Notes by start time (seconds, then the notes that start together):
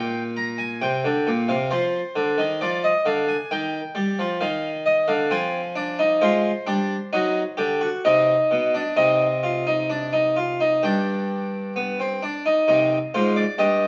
Already playing: A#2 G5
0.37 A#5
0.58 G#5
0.82 C3 G5
1.04 D3
1.27 A#2
1.49 C3 F5
1.71 F3 C5
2.16 D3
2.38 D#3
2.61 F3 D5
2.84 D#5
3.06 D3 F5
3.28 G#5
3.51 D#3 G5
3.95 G3
4.19 F3
4.41 D#3 F5
4.86 D#5
5.08 D3 F5
5.31 F3 C4 G#5
5.75 D4
5.99 D#4
6.21 G#3 F4 C5
6.67 G3 D4
7.13 F#3 D#4
7.57 D3 G4
7.81 F#4
8.05 C3 D#4 D#5
8.51 B2
8.74 D4
8.97 C3 D#4 D#5
9.43 F4
9.67 D#4
9.90 D4
10.13 D#4
10.37 F4
10.60 D#4
10.83 G2 D4 G5
11.76 B3
11.99 C4
12.23 D4
12.46 D#4
12.68 C3 D#4
13.14 G#2 F4 C5
13.36 D5
13.58 G2 G4 D#5